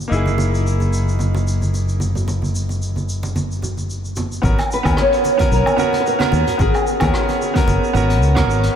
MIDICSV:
0, 0, Header, 1, 6, 480
1, 0, Start_track
1, 0, Key_signature, 5, "minor"
1, 0, Tempo, 540541
1, 99, Time_signature, 4, 2, 24, 8
1, 7774, End_track
2, 0, Start_track
2, 0, Title_t, "Nylon-string guitar"
2, 0, Program_c, 0, 24
2, 4203, Note_on_c, 0, 71, 104
2, 4415, Note_off_c, 0, 71, 0
2, 4444, Note_on_c, 0, 73, 96
2, 4908, Note_off_c, 0, 73, 0
2, 4911, Note_on_c, 0, 70, 101
2, 5300, Note_off_c, 0, 70, 0
2, 5329, Note_on_c, 0, 71, 77
2, 5382, Note_off_c, 0, 71, 0
2, 5394, Note_on_c, 0, 70, 101
2, 5833, Note_off_c, 0, 70, 0
2, 5873, Note_on_c, 0, 68, 98
2, 6344, Note_off_c, 0, 68, 0
2, 6347, Note_on_c, 0, 66, 73
2, 7507, Note_off_c, 0, 66, 0
2, 7774, End_track
3, 0, Start_track
3, 0, Title_t, "Grand piano"
3, 0, Program_c, 1, 0
3, 68, Note_on_c, 1, 58, 65
3, 85, Note_on_c, 1, 63, 64
3, 105, Note_on_c, 1, 64, 65
3, 124, Note_on_c, 1, 68, 71
3, 3898, Note_off_c, 1, 58, 0
3, 3906, Note_off_c, 1, 63, 0
3, 3916, Note_off_c, 1, 64, 0
3, 3922, Note_on_c, 1, 59, 77
3, 3925, Note_off_c, 1, 68, 0
3, 3927, Note_on_c, 1, 61, 69
3, 3940, Note_on_c, 1, 66, 66
3, 3948, Note_on_c, 1, 70, 83
3, 4043, Note_off_c, 1, 59, 0
3, 4046, Note_off_c, 1, 61, 0
3, 4052, Note_off_c, 1, 66, 0
3, 4057, Note_off_c, 1, 70, 0
3, 4291, Note_on_c, 1, 59, 84
3, 4300, Note_on_c, 1, 61, 78
3, 4311, Note_on_c, 1, 66, 75
3, 4317, Note_on_c, 1, 70, 87
3, 4749, Note_off_c, 1, 59, 0
3, 4754, Note_off_c, 1, 61, 0
3, 4759, Note_off_c, 1, 66, 0
3, 4762, Note_off_c, 1, 70, 0
3, 4773, Note_on_c, 1, 59, 79
3, 4782, Note_on_c, 1, 61, 79
3, 4790, Note_on_c, 1, 66, 77
3, 4801, Note_on_c, 1, 70, 98
3, 5104, Note_off_c, 1, 59, 0
3, 5108, Note_off_c, 1, 61, 0
3, 5112, Note_off_c, 1, 66, 0
3, 5118, Note_off_c, 1, 70, 0
3, 5119, Note_on_c, 1, 59, 85
3, 5128, Note_on_c, 1, 61, 78
3, 5141, Note_on_c, 1, 66, 80
3, 5146, Note_on_c, 1, 70, 93
3, 5470, Note_off_c, 1, 59, 0
3, 5474, Note_off_c, 1, 61, 0
3, 5480, Note_off_c, 1, 66, 0
3, 5483, Note_off_c, 1, 70, 0
3, 5495, Note_on_c, 1, 59, 90
3, 5503, Note_on_c, 1, 61, 82
3, 5512, Note_on_c, 1, 66, 83
3, 5520, Note_on_c, 1, 70, 101
3, 5825, Note_off_c, 1, 59, 0
3, 5829, Note_off_c, 1, 61, 0
3, 5833, Note_off_c, 1, 66, 0
3, 5837, Note_off_c, 1, 70, 0
3, 5840, Note_on_c, 1, 59, 78
3, 5851, Note_on_c, 1, 61, 69
3, 5862, Note_on_c, 1, 66, 72
3, 5869, Note_on_c, 1, 70, 87
3, 5963, Note_off_c, 1, 59, 0
3, 5968, Note_off_c, 1, 61, 0
3, 5973, Note_off_c, 1, 66, 0
3, 5977, Note_off_c, 1, 70, 0
3, 6215, Note_on_c, 1, 59, 85
3, 6224, Note_on_c, 1, 61, 83
3, 6235, Note_on_c, 1, 66, 77
3, 6243, Note_on_c, 1, 70, 93
3, 6671, Note_off_c, 1, 59, 0
3, 6676, Note_off_c, 1, 61, 0
3, 6681, Note_off_c, 1, 66, 0
3, 6685, Note_off_c, 1, 70, 0
3, 6694, Note_on_c, 1, 59, 87
3, 6706, Note_on_c, 1, 61, 78
3, 6714, Note_on_c, 1, 66, 78
3, 6726, Note_on_c, 1, 70, 97
3, 7024, Note_off_c, 1, 59, 0
3, 7030, Note_off_c, 1, 61, 0
3, 7034, Note_off_c, 1, 66, 0
3, 7040, Note_off_c, 1, 70, 0
3, 7045, Note_on_c, 1, 59, 89
3, 7055, Note_on_c, 1, 61, 77
3, 7066, Note_on_c, 1, 66, 81
3, 7076, Note_on_c, 1, 70, 94
3, 7393, Note_off_c, 1, 59, 0
3, 7398, Note_off_c, 1, 61, 0
3, 7403, Note_off_c, 1, 66, 0
3, 7408, Note_off_c, 1, 70, 0
3, 7415, Note_on_c, 1, 59, 88
3, 7424, Note_on_c, 1, 61, 89
3, 7434, Note_on_c, 1, 66, 79
3, 7441, Note_on_c, 1, 70, 106
3, 7745, Note_off_c, 1, 59, 0
3, 7749, Note_off_c, 1, 61, 0
3, 7754, Note_off_c, 1, 66, 0
3, 7758, Note_off_c, 1, 70, 0
3, 7774, End_track
4, 0, Start_track
4, 0, Title_t, "Fingered electric bass"
4, 0, Program_c, 2, 33
4, 99, Note_on_c, 2, 30, 75
4, 3917, Note_off_c, 2, 30, 0
4, 3937, Note_on_c, 2, 32, 95
4, 4026, Note_off_c, 2, 32, 0
4, 4308, Note_on_c, 2, 39, 98
4, 4381, Note_off_c, 2, 39, 0
4, 4898, Note_on_c, 2, 35, 89
4, 4986, Note_off_c, 2, 35, 0
4, 5615, Note_on_c, 2, 39, 102
4, 5705, Note_off_c, 2, 39, 0
4, 5855, Note_on_c, 2, 32, 94
4, 5945, Note_off_c, 2, 32, 0
4, 6229, Note_on_c, 2, 39, 100
4, 6301, Note_off_c, 2, 39, 0
4, 6811, Note_on_c, 2, 30, 78
4, 6903, Note_off_c, 2, 30, 0
4, 7053, Note_on_c, 2, 32, 101
4, 7293, Note_off_c, 2, 32, 0
4, 7293, Note_on_c, 2, 37, 87
4, 7528, Note_off_c, 2, 37, 0
4, 7528, Note_on_c, 2, 32, 109
4, 7701, Note_off_c, 2, 32, 0
4, 7774, End_track
5, 0, Start_track
5, 0, Title_t, "Downlifter"
5, 0, Program_c, 3, 103
5, 0, Note_on_c, 3, 60, 61
5, 99, Note_off_c, 3, 60, 0
5, 7774, End_track
6, 0, Start_track
6, 0, Title_t, "Drums"
6, 5, Note_on_c, 9, 82, 39
6, 93, Note_off_c, 9, 82, 0
6, 110, Note_on_c, 9, 82, 47
6, 198, Note_off_c, 9, 82, 0
6, 229, Note_on_c, 9, 63, 75
6, 241, Note_on_c, 9, 82, 36
6, 318, Note_off_c, 9, 63, 0
6, 330, Note_off_c, 9, 82, 0
6, 338, Note_on_c, 9, 62, 71
6, 352, Note_on_c, 9, 82, 79
6, 427, Note_off_c, 9, 62, 0
6, 441, Note_off_c, 9, 82, 0
6, 484, Note_on_c, 9, 82, 45
6, 573, Note_off_c, 9, 82, 0
6, 591, Note_on_c, 9, 82, 58
6, 680, Note_off_c, 9, 82, 0
6, 711, Note_on_c, 9, 62, 40
6, 715, Note_on_c, 9, 63, 60
6, 720, Note_on_c, 9, 82, 34
6, 800, Note_off_c, 9, 62, 0
6, 803, Note_off_c, 9, 63, 0
6, 809, Note_off_c, 9, 82, 0
6, 828, Note_on_c, 9, 82, 75
6, 916, Note_off_c, 9, 82, 0
6, 962, Note_on_c, 9, 82, 43
6, 1050, Note_off_c, 9, 82, 0
6, 1056, Note_on_c, 9, 63, 78
6, 1067, Note_on_c, 9, 82, 54
6, 1145, Note_off_c, 9, 63, 0
6, 1156, Note_off_c, 9, 82, 0
6, 1195, Note_on_c, 9, 62, 69
6, 1212, Note_on_c, 9, 82, 41
6, 1284, Note_off_c, 9, 62, 0
6, 1300, Note_off_c, 9, 82, 0
6, 1312, Note_on_c, 9, 82, 73
6, 1400, Note_off_c, 9, 82, 0
6, 1433, Note_on_c, 9, 63, 60
6, 1443, Note_on_c, 9, 82, 46
6, 1522, Note_off_c, 9, 63, 0
6, 1532, Note_off_c, 9, 82, 0
6, 1546, Note_on_c, 9, 62, 45
6, 1549, Note_on_c, 9, 82, 57
6, 1634, Note_off_c, 9, 62, 0
6, 1638, Note_off_c, 9, 82, 0
6, 1676, Note_on_c, 9, 82, 42
6, 1765, Note_off_c, 9, 82, 0
6, 1775, Note_on_c, 9, 63, 85
6, 1788, Note_on_c, 9, 82, 77
6, 1864, Note_off_c, 9, 63, 0
6, 1877, Note_off_c, 9, 82, 0
6, 1911, Note_on_c, 9, 64, 75
6, 1924, Note_on_c, 9, 82, 51
6, 2000, Note_off_c, 9, 64, 0
6, 2013, Note_off_c, 9, 82, 0
6, 2022, Note_on_c, 9, 62, 67
6, 2028, Note_on_c, 9, 82, 50
6, 2111, Note_off_c, 9, 62, 0
6, 2117, Note_off_c, 9, 82, 0
6, 2149, Note_on_c, 9, 63, 74
6, 2169, Note_on_c, 9, 82, 33
6, 2238, Note_off_c, 9, 63, 0
6, 2258, Note_off_c, 9, 82, 0
6, 2266, Note_on_c, 9, 82, 88
6, 2355, Note_off_c, 9, 82, 0
6, 2390, Note_on_c, 9, 62, 45
6, 2403, Note_on_c, 9, 82, 44
6, 2479, Note_off_c, 9, 62, 0
6, 2491, Note_off_c, 9, 82, 0
6, 2505, Note_on_c, 9, 82, 58
6, 2594, Note_off_c, 9, 82, 0
6, 2628, Note_on_c, 9, 63, 61
6, 2641, Note_on_c, 9, 82, 37
6, 2716, Note_off_c, 9, 63, 0
6, 2729, Note_off_c, 9, 82, 0
6, 2744, Note_on_c, 9, 82, 76
6, 2833, Note_off_c, 9, 82, 0
6, 2869, Note_on_c, 9, 62, 65
6, 2878, Note_on_c, 9, 82, 42
6, 2957, Note_off_c, 9, 62, 0
6, 2967, Note_off_c, 9, 82, 0
6, 2981, Note_on_c, 9, 63, 86
6, 2987, Note_on_c, 9, 82, 51
6, 3069, Note_off_c, 9, 63, 0
6, 3076, Note_off_c, 9, 82, 0
6, 3122, Note_on_c, 9, 82, 38
6, 3210, Note_off_c, 9, 82, 0
6, 3217, Note_on_c, 9, 62, 41
6, 3220, Note_on_c, 9, 64, 61
6, 3231, Note_on_c, 9, 82, 84
6, 3306, Note_off_c, 9, 62, 0
6, 3309, Note_off_c, 9, 64, 0
6, 3320, Note_off_c, 9, 82, 0
6, 3352, Note_on_c, 9, 63, 53
6, 3356, Note_on_c, 9, 82, 41
6, 3440, Note_off_c, 9, 63, 0
6, 3445, Note_off_c, 9, 82, 0
6, 3464, Note_on_c, 9, 82, 53
6, 3553, Note_off_c, 9, 82, 0
6, 3595, Note_on_c, 9, 82, 40
6, 3684, Note_off_c, 9, 82, 0
6, 3695, Note_on_c, 9, 82, 75
6, 3700, Note_on_c, 9, 62, 66
6, 3708, Note_on_c, 9, 63, 82
6, 3784, Note_off_c, 9, 82, 0
6, 3789, Note_off_c, 9, 62, 0
6, 3797, Note_off_c, 9, 63, 0
6, 3836, Note_on_c, 9, 82, 47
6, 3925, Note_off_c, 9, 82, 0
6, 3937, Note_on_c, 9, 36, 114
6, 3942, Note_on_c, 9, 63, 84
6, 3948, Note_on_c, 9, 82, 58
6, 4026, Note_off_c, 9, 36, 0
6, 4031, Note_off_c, 9, 63, 0
6, 4036, Note_off_c, 9, 82, 0
6, 4072, Note_on_c, 9, 62, 56
6, 4074, Note_on_c, 9, 77, 55
6, 4075, Note_on_c, 9, 42, 60
6, 4083, Note_on_c, 9, 82, 40
6, 4160, Note_off_c, 9, 62, 0
6, 4163, Note_off_c, 9, 42, 0
6, 4163, Note_off_c, 9, 77, 0
6, 4171, Note_off_c, 9, 82, 0
6, 4187, Note_on_c, 9, 82, 89
6, 4275, Note_off_c, 9, 82, 0
6, 4309, Note_on_c, 9, 77, 71
6, 4310, Note_on_c, 9, 36, 104
6, 4310, Note_on_c, 9, 42, 69
6, 4315, Note_on_c, 9, 63, 61
6, 4319, Note_on_c, 9, 82, 49
6, 4398, Note_off_c, 9, 77, 0
6, 4399, Note_off_c, 9, 36, 0
6, 4399, Note_off_c, 9, 42, 0
6, 4404, Note_off_c, 9, 63, 0
6, 4408, Note_off_c, 9, 82, 0
6, 4412, Note_on_c, 9, 37, 78
6, 4424, Note_on_c, 9, 62, 89
6, 4427, Note_on_c, 9, 82, 60
6, 4501, Note_off_c, 9, 37, 0
6, 4513, Note_off_c, 9, 62, 0
6, 4515, Note_off_c, 9, 82, 0
6, 4550, Note_on_c, 9, 42, 45
6, 4559, Note_on_c, 9, 82, 43
6, 4639, Note_off_c, 9, 42, 0
6, 4648, Note_off_c, 9, 82, 0
6, 4660, Note_on_c, 9, 82, 97
6, 4662, Note_on_c, 9, 62, 55
6, 4749, Note_off_c, 9, 82, 0
6, 4750, Note_off_c, 9, 62, 0
6, 4783, Note_on_c, 9, 42, 68
6, 4790, Note_on_c, 9, 36, 104
6, 4790, Note_on_c, 9, 63, 97
6, 4798, Note_on_c, 9, 82, 54
6, 4872, Note_off_c, 9, 42, 0
6, 4878, Note_off_c, 9, 36, 0
6, 4879, Note_off_c, 9, 63, 0
6, 4887, Note_off_c, 9, 82, 0
6, 4901, Note_on_c, 9, 82, 61
6, 4990, Note_off_c, 9, 82, 0
6, 5027, Note_on_c, 9, 77, 67
6, 5037, Note_on_c, 9, 62, 73
6, 5038, Note_on_c, 9, 82, 46
6, 5115, Note_off_c, 9, 77, 0
6, 5126, Note_off_c, 9, 62, 0
6, 5127, Note_off_c, 9, 82, 0
6, 5132, Note_on_c, 9, 63, 69
6, 5139, Note_on_c, 9, 82, 84
6, 5221, Note_off_c, 9, 63, 0
6, 5228, Note_off_c, 9, 82, 0
6, 5266, Note_on_c, 9, 62, 48
6, 5272, Note_on_c, 9, 42, 71
6, 5280, Note_on_c, 9, 82, 53
6, 5354, Note_off_c, 9, 62, 0
6, 5360, Note_off_c, 9, 42, 0
6, 5369, Note_off_c, 9, 82, 0
6, 5385, Note_on_c, 9, 82, 62
6, 5474, Note_off_c, 9, 82, 0
6, 5503, Note_on_c, 9, 63, 92
6, 5508, Note_on_c, 9, 42, 62
6, 5513, Note_on_c, 9, 37, 79
6, 5524, Note_on_c, 9, 82, 41
6, 5592, Note_off_c, 9, 63, 0
6, 5596, Note_off_c, 9, 42, 0
6, 5601, Note_off_c, 9, 37, 0
6, 5610, Note_on_c, 9, 62, 84
6, 5613, Note_off_c, 9, 82, 0
6, 5625, Note_on_c, 9, 82, 80
6, 5699, Note_off_c, 9, 62, 0
6, 5713, Note_off_c, 9, 82, 0
6, 5748, Note_on_c, 9, 64, 82
6, 5749, Note_on_c, 9, 42, 67
6, 5751, Note_on_c, 9, 82, 57
6, 5837, Note_off_c, 9, 42, 0
6, 5837, Note_off_c, 9, 64, 0
6, 5840, Note_off_c, 9, 82, 0
6, 5853, Note_on_c, 9, 62, 53
6, 5855, Note_on_c, 9, 63, 106
6, 5856, Note_on_c, 9, 36, 123
6, 5860, Note_on_c, 9, 82, 58
6, 5941, Note_off_c, 9, 62, 0
6, 5944, Note_off_c, 9, 63, 0
6, 5945, Note_off_c, 9, 36, 0
6, 5949, Note_off_c, 9, 82, 0
6, 5985, Note_on_c, 9, 42, 55
6, 5991, Note_on_c, 9, 77, 61
6, 5995, Note_on_c, 9, 82, 41
6, 6074, Note_off_c, 9, 42, 0
6, 6080, Note_off_c, 9, 77, 0
6, 6084, Note_off_c, 9, 82, 0
6, 6100, Note_on_c, 9, 82, 95
6, 6189, Note_off_c, 9, 82, 0
6, 6217, Note_on_c, 9, 77, 76
6, 6223, Note_on_c, 9, 62, 78
6, 6223, Note_on_c, 9, 63, 75
6, 6224, Note_on_c, 9, 42, 70
6, 6229, Note_on_c, 9, 36, 105
6, 6235, Note_on_c, 9, 82, 50
6, 6306, Note_off_c, 9, 77, 0
6, 6312, Note_off_c, 9, 62, 0
6, 6312, Note_off_c, 9, 63, 0
6, 6313, Note_off_c, 9, 42, 0
6, 6317, Note_off_c, 9, 36, 0
6, 6324, Note_off_c, 9, 82, 0
6, 6337, Note_on_c, 9, 37, 77
6, 6350, Note_on_c, 9, 82, 63
6, 6426, Note_off_c, 9, 37, 0
6, 6439, Note_off_c, 9, 82, 0
6, 6472, Note_on_c, 9, 62, 56
6, 6475, Note_on_c, 9, 42, 44
6, 6475, Note_on_c, 9, 82, 37
6, 6561, Note_off_c, 9, 62, 0
6, 6563, Note_off_c, 9, 82, 0
6, 6564, Note_off_c, 9, 42, 0
6, 6587, Note_on_c, 9, 82, 82
6, 6676, Note_off_c, 9, 82, 0
6, 6708, Note_on_c, 9, 36, 108
6, 6708, Note_on_c, 9, 42, 69
6, 6710, Note_on_c, 9, 63, 96
6, 6718, Note_on_c, 9, 82, 51
6, 6796, Note_off_c, 9, 42, 0
6, 6797, Note_off_c, 9, 36, 0
6, 6799, Note_off_c, 9, 63, 0
6, 6806, Note_off_c, 9, 82, 0
6, 6816, Note_on_c, 9, 62, 83
6, 6823, Note_on_c, 9, 82, 64
6, 6905, Note_off_c, 9, 62, 0
6, 6912, Note_off_c, 9, 82, 0
6, 6960, Note_on_c, 9, 82, 44
6, 7048, Note_off_c, 9, 82, 0
6, 7056, Note_on_c, 9, 62, 47
6, 7056, Note_on_c, 9, 64, 84
6, 7059, Note_on_c, 9, 63, 69
6, 7066, Note_on_c, 9, 82, 82
6, 7144, Note_off_c, 9, 64, 0
6, 7145, Note_off_c, 9, 62, 0
6, 7148, Note_off_c, 9, 63, 0
6, 7155, Note_off_c, 9, 82, 0
6, 7189, Note_on_c, 9, 42, 72
6, 7200, Note_on_c, 9, 82, 49
6, 7278, Note_off_c, 9, 42, 0
6, 7289, Note_off_c, 9, 82, 0
6, 7304, Note_on_c, 9, 82, 67
6, 7393, Note_off_c, 9, 82, 0
6, 7427, Note_on_c, 9, 37, 85
6, 7428, Note_on_c, 9, 36, 107
6, 7430, Note_on_c, 9, 62, 80
6, 7431, Note_on_c, 9, 42, 68
6, 7438, Note_on_c, 9, 63, 86
6, 7440, Note_on_c, 9, 82, 46
6, 7516, Note_off_c, 9, 37, 0
6, 7517, Note_off_c, 9, 36, 0
6, 7519, Note_off_c, 9, 42, 0
6, 7519, Note_off_c, 9, 62, 0
6, 7527, Note_off_c, 9, 63, 0
6, 7529, Note_off_c, 9, 82, 0
6, 7550, Note_on_c, 9, 82, 85
6, 7639, Note_off_c, 9, 82, 0
6, 7664, Note_on_c, 9, 42, 68
6, 7674, Note_on_c, 9, 62, 48
6, 7678, Note_on_c, 9, 82, 49
6, 7753, Note_off_c, 9, 42, 0
6, 7763, Note_off_c, 9, 62, 0
6, 7767, Note_off_c, 9, 82, 0
6, 7774, End_track
0, 0, End_of_file